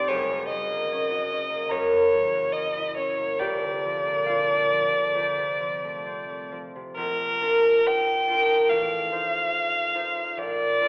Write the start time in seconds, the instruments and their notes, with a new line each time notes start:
Already playing: harp F1 F2 C3 A3 C4 D#4 G4 C5 D5 G5 C6
0.08 harp F#1 F#2 G#4 G#5, violin C#5
0.31 harp C#3
0.49 harp F#3, violin D#5
0.72 harp A#3
0.92 harp C#4
1.11 harp F#4
1.31 harp C#4
1.50 harp A#3
1.69 harp F#2 A#4 A#5, violin C#5
1.92 harp C#3
2.13 harp E3
2.35 harp A#3
2.52 harp C#4, violin D#5
2.77 harp E4
2.97 harp C#4, violin C#5
3.17 harp A#3
3.39 harp F1 F2 G4 G5, violin D5
3.63 harp D3
3.85 harp F3
4.06 harp A#3
4.26 harp D4 F4 F5
4.50 harp A#3
4.71 harp F3
4.93 harp D3
5.15 harp F2
5.38 harp C3
5.61 harp F3
5.84 harp A3
6.06 harp C4
6.29 harp A3
6.52 harp F3
6.76 harp C3
6.96 harp A#1, violin A#4
7.42 harp D4 F4 A#4
7.87 violin G5
8.27 harp D4 F4 A#4
8.70 harp A1, violin F5
9.11 harp D#4 F4 C5
9.94 harp D#4 F4 C5
10.37 harp A#1, violin D5
10.81 harp D4 F4 A#4